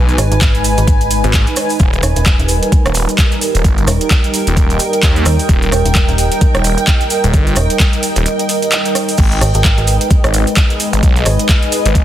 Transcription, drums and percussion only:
0.09 closed hi-hat, maracas
0.18 cross-stick, open hi-hat, maracas
0.32 closed hi-hat, maracas
0.41 kick, clap, closed hi-hat, maracas
0.55 closed hi-hat, maracas
0.64 open hi-hat, maracas
0.77 closed hi-hat, maracas
0.88 kick, closed hi-hat, maracas
1.01 closed hi-hat, maracas
1.11 open hi-hat, maracas
1.24 closed hi-hat, maracas
1.33 kick, clap, closed hi-hat, maracas
1.47 closed hi-hat, maracas
1.56 cross-stick, open hi-hat, maracas
1.69 open hi-hat, maracas
1.79 kick, closed hi-hat, maracas
1.93 closed hi-hat, maracas
2.03 cross-stick, open hi-hat, maracas
2.16 closed hi-hat, maracas
2.26 kick, clap, closed hi-hat, maracas
2.39 closed hi-hat, maracas
2.48 open hi-hat, maracas
2.63 closed hi-hat, maracas
2.72 kick, closed hi-hat, maracas
2.86 cross-stick, closed hi-hat, maracas
2.94 open hi-hat, maracas
3.09 closed hi-hat, maracas
3.18 kick, clap, closed hi-hat, maracas
3.32 closed hi-hat, maracas
3.41 open hi-hat, maracas
3.55 closed hi-hat, maracas
3.64 kick, closed hi-hat, maracas
3.78 closed hi-hat, maracas
3.87 cross-stick, open hi-hat, maracas
4.01 closed hi-hat, maracas
4.11 kick, clap, closed hi-hat, maracas
4.24 closed hi-hat, maracas
4.34 open hi-hat, maracas
4.47 closed hi-hat, maracas
4.57 kick, closed hi-hat, maracas
4.70 closed hi-hat, maracas
4.79 open hi-hat, maracas
4.93 closed hi-hat, maracas
5.03 kick, clap, closed hi-hat, maracas
5.16 closed hi-hat, maracas
5.26 cross-stick, open hi-hat, maracas
5.39 open hi-hat, maracas
5.49 kick, closed hi-hat, maracas
5.62 closed hi-hat, maracas
5.72 cross-stick, open hi-hat, maracas
5.86 closed hi-hat, maracas
5.95 kick, clap, closed hi-hat, maracas
6.09 closed hi-hat, maracas
6.18 open hi-hat, maracas
6.32 closed hi-hat, maracas
6.41 kick, closed hi-hat, maracas
6.55 cross-stick, closed hi-hat, maracas
6.64 open hi-hat, maracas
6.78 closed hi-hat, maracas
6.87 kick, clap, closed hi-hat, maracas
7.01 closed hi-hat, maracas
7.10 open hi-hat, maracas
7.24 closed hi-hat, maracas
7.34 kick, closed hi-hat, maracas
7.47 closed hi-hat, maracas
7.56 cross-stick, open hi-hat, maracas
7.70 closed hi-hat, maracas
7.80 kick, clap, closed hi-hat, maracas
7.93 closed hi-hat, maracas
8.03 open hi-hat, maracas
8.16 closed hi-hat, maracas
8.26 closed hi-hat, maracas
8.39 closed hi-hat, maracas
8.49 open hi-hat, maracas
8.62 closed hi-hat, maracas
8.72 clap, closed hi-hat, maracas
8.85 closed hi-hat, maracas
8.95 cross-stick, open hi-hat, maracas
9.08 open hi-hat, maracas
9.17 kick, closed hi-hat, crash, maracas
9.32 closed hi-hat, maracas
9.41 cross-stick, open hi-hat, maracas
9.54 closed hi-hat, maracas
9.64 kick, clap, closed hi-hat, maracas
9.78 closed hi-hat, maracas
9.87 open hi-hat, maracas
10.01 closed hi-hat, maracas
10.10 kick, closed hi-hat, maracas
10.24 cross-stick, closed hi-hat, maracas
10.34 open hi-hat, maracas
10.47 closed hi-hat, maracas
10.56 kick, clap, closed hi-hat, maracas
10.70 closed hi-hat, maracas
10.80 open hi-hat, maracas
10.93 closed hi-hat, maracas
11.03 kick, closed hi-hat, maracas
11.16 closed hi-hat, maracas
11.26 cross-stick, open hi-hat, maracas
11.39 closed hi-hat, maracas
11.49 kick, clap, closed hi-hat, maracas
11.62 closed hi-hat, maracas
11.72 open hi-hat, maracas
11.86 closed hi-hat, maracas
11.95 kick, closed hi-hat, maracas

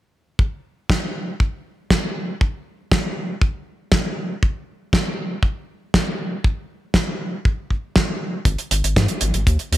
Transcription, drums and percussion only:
0.39 kick
0.90 kick, snare
1.40 kick
1.90 kick, snare
2.41 kick
2.92 kick, snare
3.42 kick
3.92 kick, snare
4.43 kick
4.93 kick, snare
5.43 kick
5.94 kick, snare
6.44 kick
6.94 kick, snare
7.45 kick
7.70 kick
7.96 kick, snare
8.45 kick, closed hi-hat
8.58 closed hi-hat
8.71 closed hi-hat
8.84 closed hi-hat
8.96 kick, snare, closed hi-hat
9.08 closed hi-hat
9.21 closed hi-hat
9.34 closed hi-hat
9.47 kick, closed hi-hat
9.59 closed hi-hat
9.73 closed hi-hat

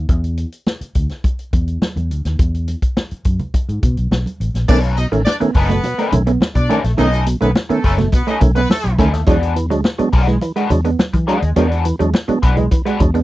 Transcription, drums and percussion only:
0.09 kick, closed hi-hat, muted conga
0.24 closed hi-hat
0.37 closed hi-hat
0.52 closed hi-hat
0.67 snare, high conga
0.81 closed hi-hat
0.95 kick, closed hi-hat
1.09 snare, closed hi-hat
1.24 kick, closed hi-hat, muted conga
1.39 closed hi-hat
1.53 kick, closed hi-hat, muted conga
1.68 closed hi-hat
1.82 snare, high conga
1.97 closed hi-hat, high conga
2.11 closed hi-hat
2.25 snare, closed hi-hat
2.39 kick, closed hi-hat, muted conga
2.54 closed hi-hat
2.68 closed hi-hat, muted conga
2.82 kick, closed hi-hat
2.97 snare, high conga
3.11 closed hi-hat
3.24 kick, closed hi-hat
3.39 closed hi-hat, low conga
3.54 kick, closed hi-hat, muted conga
3.69 closed hi-hat
3.83 kick, closed hi-hat, muted conga, low conga
3.97 closed hi-hat
4.11 snare, high conga
4.26 closed hi-hat, high conga
4.41 closed hi-hat
4.55 snare, closed hi-hat
4.69 kick, crash, muted conga
4.84 closed hi-hat
4.97 closed hi-hat
5.13 closed hi-hat
5.27 snare, high conga
5.41 closed hi-hat
5.54 kick, open hi-hat
5.69 snare, closed hi-hat
5.84 closed hi-hat, muted conga
5.99 closed hi-hat
6.12 closed hi-hat, muted conga, low conga
6.27 closed hi-hat
6.41 snare, high conga
6.55 kick, closed hi-hat, high conga
6.70 closed hi-hat
6.84 snare, closed hi-hat
6.98 closed hi-hat, muted conga
7.13 closed hi-hat
7.26 closed hi-hat, muted conga
7.42 closed hi-hat
7.55 snare, high conga
7.70 closed hi-hat
7.84 kick, open hi-hat
7.98 snare, closed hi-hat, low conga
8.12 kick, closed hi-hat, muted conga
8.27 closed hi-hat
8.41 kick, closed hi-hat, muted conga, low conga
8.56 closed hi-hat
8.70 snare, high conga
8.84 closed hi-hat, high conga
8.99 kick, closed hi-hat
9.14 snare, closed hi-hat
9.27 kick, closed hi-hat, muted conga
9.43 closed hi-hat
9.56 closed hi-hat
9.71 closed hi-hat
9.84 snare, high conga
9.99 closed hi-hat
10.12 kick, open hi-hat
10.27 snare, closed hi-hat
10.41 closed hi-hat, muted conga
10.56 closed hi-hat
10.70 closed hi-hat, muted conga, low conga
10.85 closed hi-hat
10.99 snare, high conga
11.13 kick, closed hi-hat, high conga
11.28 closed hi-hat
11.42 closed hi-hat
11.56 closed hi-hat, muted conga
11.72 closed hi-hat
11.85 closed hi-hat
12.00 closed hi-hat
12.14 snare, high conga
12.29 closed hi-hat
12.43 kick, closed hi-hat
12.57 closed hi-hat, low conga
12.71 kick, closed hi-hat, muted conga
12.86 closed hi-hat
13.00 kick, closed hi-hat, muted conga, low conga
13.15 closed hi-hat

